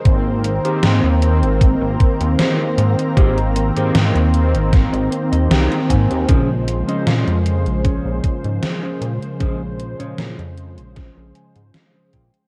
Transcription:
<<
  \new Staff \with { instrumentName = "Analog synth pad" } { \time 4/4 \key bes \dorian \tempo 4 = 77 <bes' c'' bes''>1~ | <bes' c'' bes''>1 | <bes aes' c'''>1~ | <bes aes' c'''>1 | }
  \new Staff \with { instrumentName = "Clean electric guitar" } { \time 4/4 \key bes \dorian << { r1 | r2 r8 c''16 ees''16 g''8 aes''8 | r1 | r2 r8 aes''8 f''8 g''8 | } \\ { <g' aes' bes' c''>16 r8 <g' aes' bes' c''>16 r2 <g' aes' bes' c''>8 r8 | <g' aes' bes' c''>16 r8 <g' aes' bes' c''>16 r2 <g' aes' bes' c''>8 r8 | <des' aes' c''>16 r8 <des' aes' ees''>8. r8 <des' aes' des''>8 r8. <des' aes' c''>16 r8 | <des' aes' c''>16 r8 <des' aes' des''>8. r8 <des' aes' c''>8 r8. <des' aes' c''>16 r8 | } >> }
  \new Staff \with { instrumentName = "Analog polysynth" } { \clef bass \time 4/4 \key bes \dorian <ees bes c'>8. <ees bes c'>8. <ees bes c'>2~ <ees bes c'>8 | <ees bes c'>8. <ees bes c'>8. <ees bes c'>2~ <ees bes c'>8 | <des f aes c''>8. <des f aes c''>8. <des f aes>2~ <des f aes>8 | <des f aes c''>8. <des f aes>8. <des f aes>2~ <des f aes>8 | }
  \new Staff \with { instrumentName = "Analog synth bass" } { \clef bass \time 4/4 \key bes \dorian aes,,8. r16 aes,16 ees,8 aes,,8 aes,,16 r16 ees,16 r8 aes,16 r16 | aes,,8. aes,16 aes,16 ees,8 aes,,8 aes,,16 r16 ees,16 c,16 r16 aes,16 ees,16 | bes,,8. r16 bes,16 f,8 bes,,8 bes,,16 r16 aes,16 r8 bes,16 r16 | bes,,8. bes,16 bes,16 f,8 bes,,8 bes,,16 r16 aes,16 r8 bes,16 r16 | }
  \new DrumStaff \with { instrumentName = "Drums" } \drummode { \time 4/4 <hh bd>8 hh16 hh16 <hh sn>8 hh16 hh16 <hh bd>8 <hh bd>16 hh16 <hh sn>8 hh16 hh16 | <hh bd>16 hh16 hh16 hh16 <hh sn>16 hh16 hh16 hh16 <hh bd sn>16 hh16 hh16 hh16 <hh sn>16 hh16 <hh bd>16 hh16 | <hh bd>8 hh16 hh16 <hh sn>16 hh16 hh16 hh16 <hh bd>8 <hh bd>16 hh16 <hh sn>8 hh16 hh16 | <hh bd>8 hh16 hh16 <hh sn>16 hh16 hh16 hh16 <hh bd sn>8 hh16 hh16 <hh sn>8 <hh bd>16 hh16 | }
>>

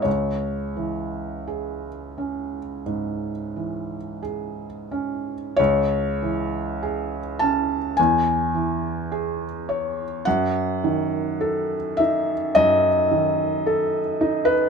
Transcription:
<<
  \new Staff \with { instrumentName = "Felt piano" } { \time 4/4 \key cis \minor \tempo 4 = 52 cis''2. r4 | cis''4. a''8 gis''2 | fis''4. e''8 dis''4.~ dis''16 b'16 | }
  \new Staff \with { instrumentName = "Felt piano" } { \clef bass \time 4/4 \key cis \minor cis,8 e8 gis'8 cis'8 gis,8 e8 gis'8 cis'8 | cis,8 e8 gis'8 cis'8 e,8 e8 gis'8 cis''8 | fis,8 dis8 a'8 dis'8 fis,8 dis8 a'8 dis'8 | }
>>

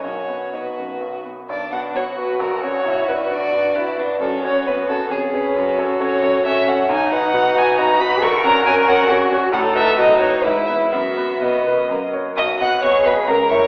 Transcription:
<<
  \new Staff \with { instrumentName = "Violin" } { \time 3/4 \key b \major \tempo 4 = 133 cis''4 b'4. r8 | \key b \minor d''8 fis''8 cis''8 b'8 ais'8 cis''8~ | cis''8 b'8 d''4. r8 | a'8 cis''8 b'8 a'8 gis'8 b'8~ |
b'8 a'8 cis''4 e''8 fis''8 | \key b \major gis''8 fis''4 gis''8 ais''8 b''8 | cis'''8 ais''8 gis''8 fis''8 r4 | fis''8 e''8 dis''8 cis''8 b'8 e''8 |
e''4 dis''4. r8 | dis'''8 fis'''8 cis'''8 b''8 ais''8 cis'''8 | }
  \new Staff \with { instrumentName = "Cello" } { \time 3/4 \key b \major cis'4 b4. r8 | \key b \minor r4 fis'2 | e'4 d'4 fis'4 | fis'2 gis'4 |
fis'2. | \key b \major dis'4 fis'2 | ais'2 fis'4 | a'4 fis'4 e'4 |
fis'2~ fis'8 r8 | fis'4 gis'4 ais'4 | }
  \new Staff \with { instrumentName = "Grand piano" } { \time 3/4 \key b \major b,,8 b8 dis'8 fis,8 b,,8 b8 | \key b \minor b,,8 <b fis'>8 <b fis'>8 <b fis'>8 ais,,8 <cis' fis'>8 | b,,8 <d' fis' b'>8 <d' fis' b'>8 <d' fis' b'>8 <d' fis' b'>8 <d' fis' b'>8 | fis,8 <cis' fis' cis''>8 <cis' fis' cis''>8 <cis' fis' cis''>8 eis,8 <cis' gis' cis''>8 |
fis,8 <cis' a' cis''>8 <cis' a' cis''>8 <cis' a' cis''>8 <cis' a' cis''>8 <cis' a' cis''>8 | \key b \major b,,8 <dis' fis' b'>8 <dis' fis' b'>8 <dis' fis' b'>8 <dis' fis' b'>8 <dis' fis' b'>8 | ais,,8 <cis' fis' cis''>8 <cis' fis' cis''>8 <cis' fis' cis''>8 <cis' fis' cis''>8 <cis' fis' cis''>8 | a,8 <dis' fis' b'>8 <dis' fis' b'>8 <dis' fis' b'>8 gis,8 <b e' b'>8 |
fis,8 <b fis' b'>8 <b fis' b'>8 <b fis' b'>8 fis,8 <ais fis' cis''>8 | b,,8 <b fis' dis''>8 <b fis' dis''>8 <b fis' dis''>8 cis,8 <ais e' e''>8 | }
  \new Staff \with { instrumentName = "Violin" } { \time 3/4 \key b \major fis'2~ fis'8 r8 | \key b \minor d'4 fis'4 fis'4~ | fis'2 e'8 d'8 | cis'4 b4 cis'4~ |
cis'4 cis'4 cis'4 | \key b \major dis'2. | fis'2. | dis'4 dis'4 e'4 |
b4 b4 ais8 r8 | dis''8 fis''8 cis''8 b'8 ais'8 cis''8 | }
>>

